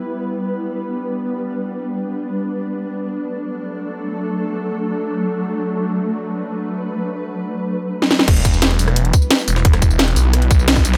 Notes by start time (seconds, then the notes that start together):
Already playing: G3 B3 B4
0.05 D4
2.79 F#3 A3 A4
5.53 B4
8.02 snare
8.11 snare
8.19 snare
8.28 E1 G3 B3 E4 B4, kick, closed hi-hat, crash
8.36 closed hi-hat
8.45 kick, closed hi-hat, tambourine
8.54 tambourine
8.62 snare, closed hi-hat
8.71 cross-stick, closed hi-hat
8.79 closed hi-hat, open hi-hat, tambourine
8.88 cross-stick, closed hi-hat
8.96 closed hi-hat
9.05 closed hi-hat
9.13 kick, closed hi-hat, tambourine
9.22 tambourine
9.31 snare, closed hi-hat
9.39 tambourine
9.48 E1, closed hi-hat, open hi-hat, tambourine
9.56 snare
9.65 kick, closed hi-hat
9.73 cross-stick, snare, closed hi-hat
9.82 E1, kick, closed hi-hat, tambourine
9.91 tambourine
9.99 snare, closed hi-hat
10.08 closed hi-hat
10.16 B1, closed hi-hat, open hi-hat, tambourine
10.33 cross-stick, closed hi-hat
10.42 closed hi-hat
10.51 B1, kick, closed hi-hat, tambourine
10.59 tambourine
10.68 snare, closed hi-hat, open hi-hat
10.76 kick, snare, tambourine
10.85 closed hi-hat, open hi-hat, tambourine
10.94 snare